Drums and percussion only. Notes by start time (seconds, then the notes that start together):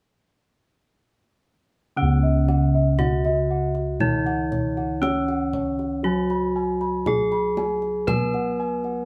2.48 kendang high
2.99 kendang high, kendang low
3.24 kendang slap
3.75 kendang slap
4.00 kendang low
4.26 kendang slap
4.52 kendang low
4.77 kendang slap
5.03 kendang high
5.28 kendang slap
5.53 kendang low
5.79 kendang slap
6.30 kendang slap
6.81 kendang slap
7.06 kendang high, kendang low
7.32 kendang slap
7.57 kendang high
7.82 kendang slap
8.08 kendang high, kendang low
8.34 kendang slap
8.84 kendang slap